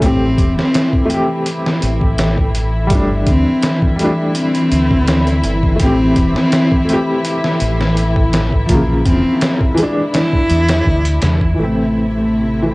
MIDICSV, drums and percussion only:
0, 0, Header, 1, 2, 480
1, 0, Start_track
1, 0, Tempo, 722892
1, 15, Time_signature, 4, 2, 24, 8
1, 8462, End_track
2, 0, Start_track
2, 0, Title_t, "Drums"
2, 13, Note_on_c, 9, 36, 100
2, 14, Note_on_c, 9, 42, 88
2, 79, Note_off_c, 9, 36, 0
2, 81, Note_off_c, 9, 42, 0
2, 253, Note_on_c, 9, 36, 87
2, 255, Note_on_c, 9, 42, 65
2, 319, Note_off_c, 9, 36, 0
2, 321, Note_off_c, 9, 42, 0
2, 391, Note_on_c, 9, 38, 55
2, 457, Note_off_c, 9, 38, 0
2, 495, Note_on_c, 9, 42, 77
2, 500, Note_on_c, 9, 38, 92
2, 561, Note_off_c, 9, 42, 0
2, 566, Note_off_c, 9, 38, 0
2, 619, Note_on_c, 9, 36, 90
2, 686, Note_off_c, 9, 36, 0
2, 731, Note_on_c, 9, 42, 61
2, 797, Note_off_c, 9, 42, 0
2, 970, Note_on_c, 9, 42, 74
2, 1037, Note_off_c, 9, 42, 0
2, 1105, Note_on_c, 9, 38, 55
2, 1172, Note_off_c, 9, 38, 0
2, 1210, Note_on_c, 9, 42, 66
2, 1276, Note_off_c, 9, 42, 0
2, 1337, Note_on_c, 9, 36, 89
2, 1404, Note_off_c, 9, 36, 0
2, 1449, Note_on_c, 9, 42, 80
2, 1455, Note_on_c, 9, 38, 105
2, 1516, Note_off_c, 9, 42, 0
2, 1521, Note_off_c, 9, 38, 0
2, 1578, Note_on_c, 9, 36, 87
2, 1645, Note_off_c, 9, 36, 0
2, 1691, Note_on_c, 9, 42, 63
2, 1758, Note_off_c, 9, 42, 0
2, 1925, Note_on_c, 9, 42, 87
2, 1929, Note_on_c, 9, 36, 102
2, 1992, Note_off_c, 9, 42, 0
2, 1996, Note_off_c, 9, 36, 0
2, 2168, Note_on_c, 9, 42, 61
2, 2169, Note_on_c, 9, 36, 91
2, 2235, Note_off_c, 9, 42, 0
2, 2236, Note_off_c, 9, 36, 0
2, 2407, Note_on_c, 9, 42, 78
2, 2412, Note_on_c, 9, 38, 97
2, 2473, Note_off_c, 9, 42, 0
2, 2479, Note_off_c, 9, 38, 0
2, 2537, Note_on_c, 9, 36, 97
2, 2604, Note_off_c, 9, 36, 0
2, 2651, Note_on_c, 9, 42, 64
2, 2717, Note_off_c, 9, 42, 0
2, 2888, Note_on_c, 9, 42, 79
2, 2954, Note_off_c, 9, 42, 0
2, 3020, Note_on_c, 9, 42, 43
2, 3086, Note_off_c, 9, 42, 0
2, 3132, Note_on_c, 9, 42, 63
2, 3198, Note_off_c, 9, 42, 0
2, 3260, Note_on_c, 9, 36, 92
2, 3326, Note_off_c, 9, 36, 0
2, 3370, Note_on_c, 9, 42, 72
2, 3375, Note_on_c, 9, 38, 102
2, 3436, Note_off_c, 9, 42, 0
2, 3442, Note_off_c, 9, 38, 0
2, 3499, Note_on_c, 9, 42, 42
2, 3565, Note_off_c, 9, 42, 0
2, 3609, Note_on_c, 9, 42, 60
2, 3676, Note_off_c, 9, 42, 0
2, 3739, Note_on_c, 9, 36, 86
2, 3805, Note_off_c, 9, 36, 0
2, 3848, Note_on_c, 9, 42, 85
2, 3851, Note_on_c, 9, 36, 105
2, 3914, Note_off_c, 9, 42, 0
2, 3917, Note_off_c, 9, 36, 0
2, 4090, Note_on_c, 9, 42, 60
2, 4092, Note_on_c, 9, 36, 90
2, 4156, Note_off_c, 9, 42, 0
2, 4158, Note_off_c, 9, 36, 0
2, 4224, Note_on_c, 9, 38, 52
2, 4290, Note_off_c, 9, 38, 0
2, 4330, Note_on_c, 9, 42, 77
2, 4335, Note_on_c, 9, 38, 107
2, 4396, Note_off_c, 9, 42, 0
2, 4402, Note_off_c, 9, 38, 0
2, 4461, Note_on_c, 9, 36, 91
2, 4527, Note_off_c, 9, 36, 0
2, 4575, Note_on_c, 9, 42, 64
2, 4641, Note_off_c, 9, 42, 0
2, 4812, Note_on_c, 9, 42, 81
2, 4879, Note_off_c, 9, 42, 0
2, 4942, Note_on_c, 9, 38, 51
2, 5008, Note_off_c, 9, 38, 0
2, 5048, Note_on_c, 9, 42, 75
2, 5114, Note_off_c, 9, 42, 0
2, 5184, Note_on_c, 9, 38, 54
2, 5250, Note_off_c, 9, 38, 0
2, 5292, Note_on_c, 9, 42, 54
2, 5359, Note_off_c, 9, 42, 0
2, 5420, Note_on_c, 9, 36, 80
2, 5486, Note_off_c, 9, 36, 0
2, 5532, Note_on_c, 9, 42, 69
2, 5537, Note_on_c, 9, 38, 98
2, 5598, Note_off_c, 9, 42, 0
2, 5603, Note_off_c, 9, 38, 0
2, 5661, Note_on_c, 9, 36, 85
2, 5727, Note_off_c, 9, 36, 0
2, 5769, Note_on_c, 9, 42, 90
2, 5772, Note_on_c, 9, 36, 107
2, 5835, Note_off_c, 9, 42, 0
2, 5838, Note_off_c, 9, 36, 0
2, 6012, Note_on_c, 9, 42, 66
2, 6013, Note_on_c, 9, 36, 86
2, 6079, Note_off_c, 9, 36, 0
2, 6079, Note_off_c, 9, 42, 0
2, 6251, Note_on_c, 9, 42, 75
2, 6256, Note_on_c, 9, 38, 108
2, 6317, Note_off_c, 9, 42, 0
2, 6322, Note_off_c, 9, 38, 0
2, 6380, Note_on_c, 9, 36, 94
2, 6446, Note_off_c, 9, 36, 0
2, 6490, Note_on_c, 9, 42, 69
2, 6556, Note_off_c, 9, 42, 0
2, 6732, Note_on_c, 9, 42, 74
2, 6737, Note_on_c, 9, 38, 104
2, 6798, Note_off_c, 9, 42, 0
2, 6803, Note_off_c, 9, 38, 0
2, 6860, Note_on_c, 9, 36, 85
2, 6926, Note_off_c, 9, 36, 0
2, 6968, Note_on_c, 9, 42, 59
2, 7035, Note_off_c, 9, 42, 0
2, 7094, Note_on_c, 9, 42, 74
2, 7100, Note_on_c, 9, 38, 101
2, 7161, Note_off_c, 9, 42, 0
2, 7166, Note_off_c, 9, 38, 0
2, 7211, Note_on_c, 9, 36, 78
2, 7277, Note_off_c, 9, 36, 0
2, 7337, Note_on_c, 9, 42, 64
2, 7403, Note_off_c, 9, 42, 0
2, 7447, Note_on_c, 9, 42, 72
2, 7453, Note_on_c, 9, 38, 92
2, 7514, Note_off_c, 9, 42, 0
2, 7519, Note_off_c, 9, 38, 0
2, 7578, Note_on_c, 9, 36, 76
2, 7644, Note_off_c, 9, 36, 0
2, 8462, End_track
0, 0, End_of_file